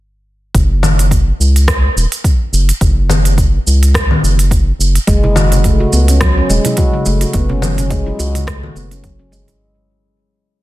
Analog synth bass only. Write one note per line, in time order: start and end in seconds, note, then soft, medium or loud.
0.55 1.32 F#1 loud
1.40 1.89 C#2 medium
1.96 2.06 E1 medium
2.53 2.72 F#1 medium
2.81 3.59 F#1 loud
3.67 4.16 C#2 medium
4.23 4.72 F#1 loud
4.79 4.98 F#1 medium
5.08 5.85 F#1 loud
5.93 6.42 C#2 medium
6.49 6.59 E1 loud
7.06 7.25 F#1 medium
7.34 8.12 F#1 loud
8.19 8.68 C#2 medium
8.75 9.03 F#1 medium
9.04 9.53 F#1 medium